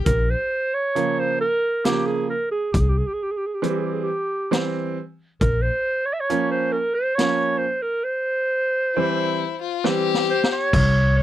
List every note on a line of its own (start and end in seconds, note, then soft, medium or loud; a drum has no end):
0.06 0.33 A#1 medium
0.06 0.32 A#4 loud
0.06 kick medium
0.06 closed hi-hat medium
0.31 0.76 C5 medium
0.74 1.21 C#5 medium
0.95 1.40 C#3 medium
0.95 1.40 F3 medium
0.95 1.40 A#3 medium
0.95 closed hi-hat soft
1.20 1.40 C5 medium
1.41 1.86 A#4 loud
1.84 2.29 C#3 medium
1.84 2.29 F3 medium
1.84 2.29 A#3 medium
1.84 2.08 G4 medium
1.84 snare medium
1.84 closed hi-hat soft
2.06 2.29 G#4 medium
2.30 2.50 A#4 medium
2.51 2.74 G#4 medium
2.72 3.01 C2 medium
2.72 2.81 G4 medium
2.72 kick medium
2.72 closed hi-hat soft
2.80 2.90 G#4 medium
2.89 2.99 G4 medium
2.98 3.08 G#4 medium
3.07 3.15 G4 medium
3.14 3.24 G#4 medium
3.22 3.32 G4 medium
3.31 3.39 G#4 medium
3.37 3.47 G4 medium
3.46 3.55 G#4 medium
3.54 3.64 G4 medium
3.62 4.07 E3 medium
3.62 4.07 G3 medium
3.62 4.07 C4 medium
3.62 3.72 G#4 medium
3.62 closed hi-hat soft
3.70 3.79 G4 medium
3.77 3.86 G#4 medium
3.84 3.95 G4 medium
3.93 4.04 G#4 medium
4.03 4.53 G4 medium
4.51 4.96 E3 medium
4.51 4.96 G3 medium
4.51 4.96 C4 medium
4.51 snare medium
4.51 closed hi-hat soft
5.41 5.68 A#1 loud
5.41 5.63 A#4 medium
5.41 kick medium
5.41 closed hi-hat soft
5.62 6.07 C5 loud
6.06 6.15 C#5 medium
6.13 6.22 E5 medium
6.20 6.51 C#5 loud
6.30 6.74 F3 medium
6.30 6.74 A#3 medium
6.30 6.74 C#4 medium
6.30 closed hi-hat soft
6.51 6.74 C5 medium
6.72 6.96 A#4 medium
6.94 7.17 C5 loud
7.15 7.63 F3 medium
7.15 7.63 A#3 medium
7.15 7.63 C#4 medium
7.15 7.60 C#5 loud
7.15 snare medium
7.15 closed hi-hat soft
7.58 7.84 C5 medium
7.82 8.05 A#4 medium
8.04 9.83 C5 loud
8.96 9.41 E3 medium
8.96 9.41 G3 medium
8.96 9.41 C4 medium
8.96 9.59 E4 medium
9.62 9.87 F4 medium
9.84 10.29 E3 medium
9.84 10.29 G3 medium
9.84 10.29 C4 medium
9.84 10.74 G4 loud
9.84 snare soft
10.14 snare medium
10.30 10.50 C5 medium
10.43 snare medium
10.52 11.19 C#5 loud
10.73 11.23 C2 loud
10.73 kick loud
10.73 crash medium
11.17 11.23 C5 loud